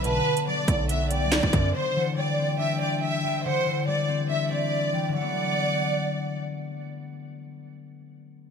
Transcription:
<<
  \new Staff \with { instrumentName = "Flute" } { \time 4/4 \key b \phrygian \tempo 4 = 141 a''4 r4. g''8 r4 | r8 fis''8 g''2~ g''8 g''8 | fis''4 r4 e''4. g''8 | fis''2. r4 |
r1 | }
  \new Staff \with { instrumentName = "Violin section" } { \time 4/4 \key b \phrygian b'4 d''4 e''8 d''4. | c''4 d''4 e''8 d''8 e''4 | c''4 d''4 e''8 d''4. | d''2. r4 |
r1 | }
  \new Staff \with { instrumentName = "Harp" } { \clef bass \time 4/4 \key b \phrygian <b, a b>8 d8 fis8 a8 b8 a4 d8 | d8 e8 g8 c'8 d'8 c'4 e8 | d8 e8 g8 c'8 d'8 c'4 e8 | <d fis a b>1~ |
<d fis a b>1 | }
  \new Staff \with { instrumentName = "808-style bass" } { \clef bass \time 4/4 \key b \phrygian b,,8 r4 b,,4~ b,,16 c,8 b,,16 fis,8 | r1 | r1 | r1 |
r1 | }
  \new DrumStaff \with { instrumentName = "Drums" } \drummode { \time 4/4 hh8. hh16 r8 <hh bd>8 hh8 hh8 <hc hh sn>16 bd16 <hh bd>8 | r4 r4 r4 r4 | r4 r4 r4 r4 | r4 r4 r4 r4 |
r4 r4 r4 r4 | }
>>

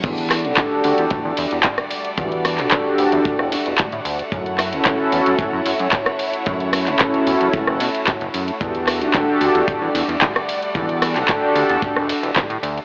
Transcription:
<<
  \new Staff \with { instrumentName = "Violin section" } { \time 4/4 \key e \dorian \tempo 4 = 112 << { <g d'' fis''>1~ | <g d'' fis''>1 | <e' cis''>1~ | <e' cis''>1 |
<g d'' fis''>1~ | <g d'' fis''>1 | } \\ { a1~ | a1~ | a1~ | a1~ |
a1~ | a1 | } >> }
  \new Staff \with { instrumentName = "Analog synth pad" } { \time 4/4 \key e \dorian <d' fis' g' a'>16 r8 <d' fis' g' a'>8. <d' fis' g' a'>16 r2 r16 | <d' fis' g' a'>16 r8 <d' fis' g' a'>8. <d' fis' g' a'>16 r2 r16 | <cis' e' fis' a'>16 r8 <cis' e' fis' a'>8. <cis' e' fis' a'>16 r2 r16 | <cis' e' fis' a'>16 r8 <cis' e' fis' a'>8. <cis' e' fis' a'>16 r2 r16 |
<d' fis' g' a'>16 r8 <d' fis' g' a'>8. <d' fis' g' a'>16 r2 r16 | <d' fis' g' a'>16 r8 <d' fis' g' a'>8. <d' fis' g' a'>16 r2 r16 | }
  \new Staff \with { instrumentName = "Analog synth bass" } { \clef bass \time 4/4 \key e \dorian e,8. b,,16 r8 d,16 e,16 e,16 e,16 e,16 e,16 r4 | e,8. b,,16 r8 d,16 e,16 r16 e,,16 r16 e,,16 r16 a,16 d,16 r16 | fis,8. cis,16 r8 e,16 fis,16 fis,16 fis,16 fis,16 fis,16 r4 | fis,8. cis,16 r8 e,16 fis,16 r16 fis,,16 b,16 r8 fis,,16 fis,16 r16 |
e,8. b,,16 r8 d,16 e,16 e,16 e,16 e,16 e,16 r4 | e,8. b,,16 r8 d,16 e,16 r16 e,,16 r16 e,,16 r16 a,16 d,16 r16 | }
  \new DrumStaff \with { instrumentName = "Drums" } \drummode { \time 4/4 <cymc hh bd>16 hh16 <hc hho cymr ss>16 hh16 <hc hh bd>8 <hho cymr>16 hh16 <hh bd>8 <hho cymr>16 hh16 <hc hh bd>16 <hh ss>16 <hho cymr>16 hh16 | <hh bd>16 hh16 <hho cymr ss>16 <hc hh>16 <hc hh bd>8 <hho cymr>16 hh16 <hh bd>16 ss16 <hho cymr>16 hh16 <hc hh bd>16 hh16 <hho cymr>16 hh16 | <hh bd>16 hh16 <hc hho cymr ss>16 hh16 <hc hh bd>8 <hho cymr>16 hh16 <hh bd>8 <hho cymr>16 hh16 <hc hh bd>16 <hh ss>16 <hho cymr>16 hh16 | <hh bd>16 hh16 <hho cymr ss>16 <hc hh>16 <hc hh bd>16 hh16 <hho cymr>16 hh16 <hh bd>16 ss16 <hho cymr>16 hh16 <hc hh bd>16 hh16 <hho cymr>16 hh16 |
<hh bd>16 hh16 <hc hho cymr ss>16 hh16 <hc hh bd>8 <hho cymr>16 hh16 <hh bd>8 <hho cymr>16 hh16 <hc hh bd>16 <hh ss>16 <hho cymr>16 hh16 | <hh bd>16 hh16 <hho cymr ss>16 <hc hh>16 <hc hh bd>8 <hho cymr>16 hh16 <hh bd>16 ss16 <hho cymr>16 hh16 <hc hh bd>16 hh16 <hho cymr>16 hh16 | }
>>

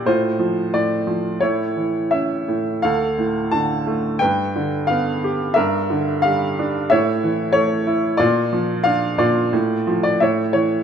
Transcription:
<<
  \new Staff \with { instrumentName = "Upright piano" } { \time 4/4 \key d \minor \tempo 4 = 89 << { c''4 d''4 cis''4 e''4 | f''4 a''4 g''4 f''4 | e''4 f''4 e''4 cis''4 | d''4 f''8 d''4~ d''16 d''16 e''8 cis''8 | } \\ { f'2 e'2 | a'2 b'2 | bes'2 cis''2 | f'4. f'4. cis''4 | } >> }
  \new Staff \with { instrumentName = "Upright piano" } { \clef bass \time 4/4 \key d \minor a,8 f8 a,8 f8 a,8 e8 cis'8 a,8 | d,8 a,8 d8 a8 g,8 d8 b8 g'8 | g,8 d8 g8 d'8 a,8 e8 a8 e'8 | bes,8 f8 d'8 bes,8 a,8 f8 a,8 e8 | }
>>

